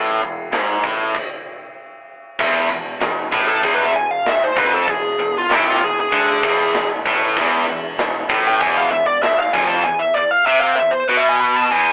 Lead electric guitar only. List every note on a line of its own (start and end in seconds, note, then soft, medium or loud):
3.48 3.63 A4 medium
3.65 3.74 G#4 medium
3.75 3.84 B4 medium
3.85 3.95 E5 medium
3.96 4.11 G#5 loud
4.11 4.25 F5 medium
4.29 4.42 E5 medium
4.44 4.57 C5 medium
4.59 4.73 B4 medium
4.75 4.91 A4 medium
4.91 5.36 G#4 medium
5.38 5.54 F4 medium
5.54 5.67 E4 medium
5.69 5.82 F4 medium
5.84 5.98 G#4 medium
6.00 6.88 G#4 medium
8.47 8.61 G5 medium
8.61 8.76 G#5 loud
8.76 8.91 F5 medium
8.92 9.07 E5 loud
9.07 9.22 D5 medium
9.23 9.38 E5 medium
9.39 9.54 F5 medium
9.53 9.68 G#5 loud
9.68 9.84 A5 loud
9.84 9.99 G#5 loud
9.99 10.15 E5 medium
10.15 10.31 D5 medium
10.31 10.46 F5 loud
10.46 10.60 E5 medium
10.60 10.76 F5 loud
10.76 10.92 E5 medium
10.91 11.08 C5 medium
11.08 11.18 B4 medium
11.17 11.28 E5 medium
11.29 11.39 G#5 loud
11.40 11.56 B5 loud
11.56 11.71 A5 medium
11.71 11.90 G#5 loud